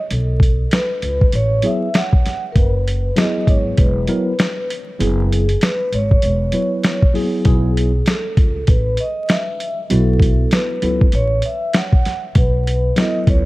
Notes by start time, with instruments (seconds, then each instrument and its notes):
0.10 upright bass B1, vibraphone A4, closed hi-hat
0.40 kick, closed hi-hat
0.71 vibraphone B4, snare, closed hi-hat
1.02 upright bass C#2, closed hi-hat
1.21 kick
1.32 upright bass A1, vibraphone C#5, closed hi-hat
1.62 tine electric piano F#3 B3 E4 G#4, vibraphone E5, closed hi-hat
1.94 vibraphone F#5, snare, closed hi-hat
2.13 kick
2.26 snare, closed hi-hat
2.52 upright bass F#1, vibraphone A#4, kick, closed hi-hat
2.57 vibraphone B4
2.88 closed hi-hat
3.16 tine electric piano F#3 B3 E4 G#4, vibraphone D#5, snare, closed hi-hat
3.47 upright bass G#1, vibraphone C#5, kick, closed hi-hat
3.77 upright bass E1, vibraphone B4, kick, closed hi-hat
4.07 tine electric piano F#3 B3 E4 A#4, closed hi-hat
4.39 snare, closed hi-hat
4.70 closed hi-hat
4.99 upright bass F#1, tine electric piano F#3 B3 E4 G#4, vibraphone G#4, closed hi-hat
5.32 closed hi-hat
5.49 closed hi-hat
5.61 vibraphone B4, snare, closed hi-hat
5.92 upright bass G#1, vibraphone C#5, closed hi-hat
6.11 kick
6.22 upright bass E1, closed hi-hat
6.52 tine electric piano F#3 B3 E4 B4, closed hi-hat
6.84 snare, closed hi-hat
7.02 kick
7.14 tine electric piano F#3 A#3 E4 G#4, open hi-hat
7.21 tine electric piano B3
7.45 upright bass B1, tine electric piano F#3 B3 E4 G#4, vibraphone G#4, kick, closed hi-hat
7.77 closed hi-hat
8.06 vibraphone A4, snare, closed hi-hat
8.37 upright bass C#2, kick, closed hi-hat
8.67 upright bass A1, vibraphone B4, kick, closed hi-hat
8.97 vibraphone D#5, closed hi-hat
9.29 vibraphone E5, snare, closed hi-hat
9.60 closed hi-hat
9.90 upright bass B1, tine electric piano F#3 B3 E4 F#4, vibraphone A4, closed hi-hat
10.20 kick, closed hi-hat
10.51 vibraphone B4, snare, closed hi-hat
10.82 upright bass C#2, tine electric piano F#3 B3 E4 A4, closed hi-hat
11.01 kick
11.12 upright bass A1, vibraphone C#5, closed hi-hat
11.42 vibraphone E5, closed hi-hat
11.73 vibraphone F#5, snare, closed hi-hat
11.93 kick
12.05 snare, closed hi-hat
12.35 upright bass B1, vibraphone B4, kick, closed hi-hat
12.67 closed hi-hat
12.96 tine electric piano F#3 B3 E4 A4, vibraphone D#5, snare, closed hi-hat
13.27 upright bass C#2, vibraphone C#5, kick, closed hi-hat